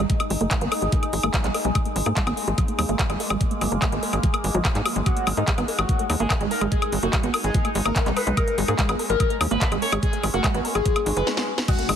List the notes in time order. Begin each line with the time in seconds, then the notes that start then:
Already playing: G#3 D#4
0.10 G#3, kick, closed hi-hat
0.20 A#3, closed hi-hat, high woodblock
0.30 G#1 G#3, open hi-hat
0.41 F#1 A#3, closed hi-hat
0.51 G#3, kick, clap, closed hi-hat, high woodblock
0.61 G#1 B3, closed hi-hat
0.72 A#4, open hi-hat, high woodblock
0.82 G#1 G#4, closed hi-hat
0.92 F#3, kick, closed hi-hat
1.03 A#3, closed hi-hat, high woodblock
1.13 G#1 G#3, open hi-hat
1.23 G#1 A#3, closed hi-hat, high woodblock
1.34 G#3, kick, clap, closed hi-hat
1.44 B1 G#3, clap, closed hi-hat
1.54 A#4, open hi-hat, high woodblock
1.65 B1 G#3, closed hi-hat
1.75 G#3 A#3, kick, closed hi-hat, high woodblock
1.85 A#3, closed hi-hat
1.96 G#1 G#3, open hi-hat
2.06 G#2 A#3, closed hi-hat, high woodblock
2.17 G#3, kick, clap, closed hi-hat
2.27 G#1 B3, closed hi-hat, high woodblock
2.37 A#4, open hi-hat
2.48 G#1 G#4, closed hi-hat
2.58 F#3, kick, closed hi-hat, high woodblock
2.68 A#3, closed hi-hat
2.79 D#2 G#3, open hi-hat, high woodblock
2.89 G#1 A#3, closed hi-hat
2.99 G#3, kick, clap, closed hi-hat
3.10 G#1 G#3, closed hi-hat, high woodblock
3.20 A#4, open hi-hat
3.30 G#1 G#3, closed hi-hat, high woodblock
3.41 G#3, kick, closed hi-hat
3.51 A#3, closed hi-hat
3.61 G#1 G#3, open hi-hat, high woodblock
3.72 F#1 A#3, closed hi-hat
3.82 G#3, kick, clap, closed hi-hat, high woodblock
3.92 G#1 B3, closed hi-hat
4.03 A#4, open hi-hat
4.13 G#1 G#4, closed hi-hat, high woodblock
4.23 F#3, kick, closed hi-hat
4.34 A#3, closed hi-hat, high woodblock
4.44 G#1 G#3, open hi-hat
4.54 G#1 F#3, closed hi-hat
4.65 G#4, kick, clap, closed hi-hat, high woodblock
4.75 G#2 G#3, clap, closed hi-hat
4.85 G#4, open hi-hat, high woodblock
4.96 G#1 G#3, closed hi-hat
5.06 G#3 D#4 F#4, kick, closed hi-hat, high woodblock
5.17 A#3, closed hi-hat
5.27 G#1 G#3, open hi-hat, high woodblock
5.37 G#2 A#3 D#4, closed hi-hat
5.48 G#3, kick, clap, closed hi-hat
5.58 G#1 B3, closed hi-hat, high woodblock
5.68 A#4, open hi-hat
5.79 G#1 F#4 G#4, closed hi-hat, high woodblock
5.89 F#3, kick, closed hi-hat
5.99 A#3, closed hi-hat
6.10 D#2 G#3, open hi-hat, high woodblock
6.20 G#1 A#3 G#4, closed hi-hat
6.30 A#4, kick, clap, closed hi-hat, high woodblock
6.41 G#1 G#3, closed hi-hat
6.51 A#4, open hi-hat
6.61 G#1 G#3, closed hi-hat, high woodblock
6.72 G#3 G#4, kick, closed hi-hat
6.82 A#3, closed hi-hat, high woodblock
6.92 G#1 G#3, open hi-hat
7.03 F#1 A#3 F#4, closed hi-hat
7.13 G#3, kick, clap, closed hi-hat, high woodblock
7.23 G#1 B3, closed hi-hat
7.34 A#4, open hi-hat, high woodblock
7.44 G#1 G#4, closed hi-hat
7.54 F#3, kick, closed hi-hat
7.65 A#3, closed hi-hat, high woodblock
7.75 G#1 G#3, open hi-hat
7.85 G#1 A#3 A#4, closed hi-hat, high woodblock
7.96 A#4, kick, clap, closed hi-hat
8.06 B1 G#3, clap, closed hi-hat
8.16 A#4 B4, open hi-hat, high woodblock
8.27 B1 G#3, closed hi-hat
8.37 G#3 C#4 A#4, kick, closed hi-hat, high woodblock
8.48 A#3, closed hi-hat
8.58 G#1 G#3, open hi-hat
8.68 G#2 A#3 G#4, closed hi-hat, high woodblock
8.79 G#3, kick, clap, closed hi-hat
8.89 G#1 B3, closed hi-hat, high woodblock
8.99 A#4, open hi-hat
9.10 G#1 G#4 A#4, closed hi-hat
9.20 F#3, kick, closed hi-hat, high woodblock
9.30 A#3, closed hi-hat
9.41 D#2 G#3, open hi-hat, high woodblock
9.51 G#1 A#3 B4, closed hi-hat
9.61 A#4, kick, clap, closed hi-hat
9.72 G#1 G#3, closed hi-hat, high woodblock
9.82 A#4 C#5, open hi-hat
9.92 G#1 G#3, closed hi-hat, high woodblock
10.03 G#3 G#4, kick, closed hi-hat
10.13 A#3, closed hi-hat
10.23 G#1 G#3, open hi-hat, high woodblock
10.34 F#1 A#3 F#4, closed hi-hat
10.44 G#3, kick, clap, closed hi-hat, high woodblock
10.54 G#1 B3, closed hi-hat
10.65 A#4, open hi-hat
10.75 G#1 G#4, closed hi-hat, high woodblock
10.86 F#3, kick, closed hi-hat, swell
10.96 A#3, closed hi-hat, high woodblock
11.06 G#1 D#4, open hi-hat
11.17 F#1 G#4 B4, closed hi-hat
11.27 snare
11.37 snare
11.58 snare
11.68 G#3 D#4 F#4, kick, closed hi-hat, crash, impact, high woodblock
11.79 A#3, closed hi-hat
11.89 G#1 G#3, open hi-hat, high woodblock